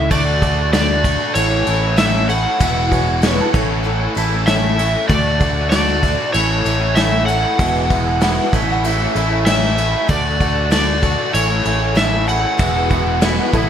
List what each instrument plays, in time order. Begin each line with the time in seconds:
Already playing: twelve-string acoustic guitar A3 C#4 E4 A4, electric slide guitar E5
0.09 fingered electric bass D2, overdriven electric guitar D3 A3 D4 F#4, grand piano F#4 A4 D5, twelve-string acoustic guitar A4, electric slide guitar D5, kick, crash
0.40 overdriven electric guitar D3 A3 D4 F#4, grand piano F#4 A4 D5, twelve-string acoustic guitar A4, kick, ride
0.72 overdriven electric guitar D3 A3 D4 F#4, twelve-string acoustic guitar A4, electric slide guitar D5, snare, ride
1.03 overdriven electric guitar D3 A3 D4 F#4, twelve-string acoustic guitar A4, kick, ride
1.18 overdriven electric guitar A3 D4 F#4
1.33 fingered electric bass A1, overdriven electric guitar A2 E3 A3 C#4 E4, grand piano E4 A4 C#5, twelve-string acoustic guitar A4, electric slide guitar C#5, ride
1.49 overdriven electric guitar A3 C#4 E4
1.66 fingered electric bass A1, overdriven electric guitar E3 A3 C#4 E4, twelve-string acoustic guitar A4, ride
1.81 overdriven electric guitar A3 C#4 E4
1.96 overdriven electric guitar A2 E3 A3 C#4 E4, twelve-string acoustic guitar A4, electric slide guitar E5, snare, ride
2.27 overdriven electric guitar E3 A3 C#4 E4, twelve-string acoustic guitar A4, electric slide guitar F#5, ride
2.43 overdriven electric guitar A3 C#4 E4
2.59 fingered electric bass E1, overdriven electric guitar E2 B2 E3 G#3 B3 E4, grand piano F#4 G#4 E5, twelve-string acoustic guitar F#4, kick, ride
2.90 overdriven electric guitar E3 G#3 B3 E4, twelve-string acoustic guitar F#4, grand piano F#4 G#4 C#5, kick, ride
3.22 overdriven electric guitar E2 B2 E3 G#3 B3 E4, twelve-string acoustic guitar F#4, mandolin C#5, snare, ride
3.41 mandolin A4
3.52 fingered electric bass A1, overdriven electric guitar A2 E3 A3 C#4 E4, grand piano E4 A4 C#5, twelve-string acoustic guitar A4, kick, crash
3.69 overdriven electric guitar A3 C#4 E4
3.84 overdriven electric guitar E3 A3 C#4 E4, twelve-string acoustic guitar A4
4.00 overdriven electric guitar A3 C#4 E4
4.14 fingered electric bass A1, overdriven electric guitar E3 A3 C#4 E4, mandolin E4 A4, twelve-string acoustic guitar A4, ride
4.32 overdriven electric guitar A3 C#4 E4
4.46 overdriven electric guitar A2 E3 A3 C#4 E4, twelve-string acoustic guitar A4, electric slide guitar E5, snare, ride
4.77 overdriven electric guitar E3 A3 C#4 E4, twelve-string acoustic guitar A4, snare, ride
4.92 overdriven electric guitar A3 C#4 E4
5.08 fingered electric bass D2, overdriven electric guitar D3 A3 D4 F#4, grand piano F#4 A4 D5, twelve-string acoustic guitar A4, electric slide guitar D5, kick, crash
5.39 overdriven electric guitar D3 A3 D4 F#4, grand piano F#4 A4 D5, twelve-string acoustic guitar A4, kick, ride
5.70 overdriven electric guitar D3 A3 D4 F#4, twelve-string acoustic guitar A4, electric slide guitar D5, snare, ride
6.02 overdriven electric guitar D3 A3 D4 F#4, twelve-string acoustic guitar A4, kick, ride
6.17 overdriven electric guitar A3 D4 F#4
6.32 fingered electric bass A1, overdriven electric guitar A2 E3 A3 C#4 E4, grand piano E4 A4 C#5, twelve-string acoustic guitar A4, electric slide guitar C#5, ride
6.48 overdriven electric guitar A3 C#4 E4
6.64 fingered electric bass A1, overdriven electric guitar E3 A3 C#4 E4, twelve-string acoustic guitar A4, ride
6.79 overdriven electric guitar A3 C#4 E4
6.94 overdriven electric guitar A2 E3 A3 C#4 E4, twelve-string acoustic guitar A4, electric slide guitar E5, snare, ride
7.25 overdriven electric guitar E3 A3 C#4 E4, twelve-string acoustic guitar A4, electric slide guitar F#5, ride
7.42 overdriven electric guitar A3 C#4 E4
7.58 fingered electric bass E1, overdriven electric guitar E2 B2 E3 G#3 B3 E4, grand piano F#4 G#4 E5, twelve-string acoustic guitar F#4, kick, ride
7.89 overdriven electric guitar E3 G#3 B3 E4, grand piano F#4 G#4 E5, twelve-string acoustic guitar F#4, kick, ride
8.21 overdriven electric guitar E2 B2 E3 G#3 B3 E4, twelve-string acoustic guitar F#4, mandolin F#5, snare, ride
8.51 fingered electric bass A1, overdriven electric guitar A2 E3 A3 C#4 E4, grand piano E4 A4 C#5, twelve-string acoustic guitar A4, kick, ride
8.56 mandolin E5
8.68 overdriven electric guitar A3 C#4 E4, mandolin F#5
8.84 overdriven electric guitar E3 A3 C#4 E4, twelve-string acoustic guitar A4, mandolin E5, ride
9.00 overdriven electric guitar A3 C#4 E4
9.14 fingered electric bass A1, overdriven electric guitar E3 A3 C#4 E4, twelve-string acoustic guitar A4, mandolin E5, ride
9.30 overdriven electric guitar A3 C#4 E4
9.46 overdriven electric guitar A2 E3 A3 C#4 E4, twelve-string acoustic guitar A4, electric slide guitar E5, snare, ride
9.63 snare
9.77 overdriven electric guitar E3 A3 C#4 E4, twelve-string acoustic guitar A4, snare, ride
9.92 overdriven electric guitar A3 C#4 E4
10.08 fingered electric bass D2, overdriven electric guitar D3 A3 D4 F#4, grand piano F#4 A4 D5, twelve-string acoustic guitar A4, electric slide guitar D5, kick, crash
10.38 overdriven electric guitar D3 A3 D4 F#4, grand piano F#4 A4 D5, twelve-string acoustic guitar A4, kick, ride
10.70 overdriven electric guitar D3 A3 D4 F#4, twelve-string acoustic guitar A4, electric slide guitar D5, snare, ride
11.01 overdriven electric guitar D3 A3 D4 F#4, twelve-string acoustic guitar A4, kick, ride
11.18 overdriven electric guitar A3 D4 F#4
11.33 fingered electric bass A1, overdriven electric guitar A2 E3 A3 C#4 E4, grand piano E4 A4 C#5, twelve-string acoustic guitar A4, electric slide guitar C#5, ride
11.49 overdriven electric guitar A3 C#4 E4
11.64 fingered electric bass A1, overdriven electric guitar E3 A3 C#4 E4, twelve-string acoustic guitar A4, ride
11.80 overdriven electric guitar A3 C#4 E4
11.95 overdriven electric guitar A2 E3 A3 C#4 E4, twelve-string acoustic guitar A4, electric slide guitar E5, snare, ride
12.26 overdriven electric guitar E3 A3 C#4 E4, twelve-string acoustic guitar A4, electric slide guitar F#5, ride
12.42 overdriven electric guitar A3 C#4 E4
12.57 fingered electric bass E1, overdriven electric guitar E2 B2 E3 G#3 B3 E4, grand piano F#4 G#4 E5, twelve-string acoustic guitar F#4, kick, ride
12.89 overdriven electric guitar E3 G#3 B3 E4, twelve-string acoustic guitar F#4, grand piano F#4 G#4 E5, kick, ride
13.21 overdriven electric guitar E2 B2 E3 G#3 B3 E4, mandolin E4, twelve-string acoustic guitar F#4, snare, ride
13.52 fingered electric bass A1, overdriven electric guitar A2 E3 A3 C#4 E4, grand piano E4 A4 C#5, twelve-string acoustic guitar A4, kick, ride
13.56 mandolin B3 E4